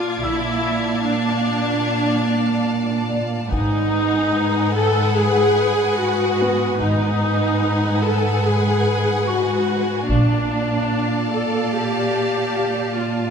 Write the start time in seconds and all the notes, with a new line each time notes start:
Already playing: A#2 F4 D5 F5 A5 D6 G#6
0.22 A#1 A#2 E4 D5 F5 A5 E6
1.04 D4
3.10 D5
3.51 G#1 G#2 D#4 B4 F#5 G#5 B5, taiko
4.34 D#6
4.75 A4
5.16 G#4
5.98 F#4
6.41 B3 B4
6.79 G#1 G#2 D#4 B4 F#5 G#5
8.03 A4
8.45 G#4
9.27 F#4 C#6
10.08 A#1 A#2 D4 D5 F5 A5, taiko
11.32 A4
11.74 G4
12.57 F5
12.98 F4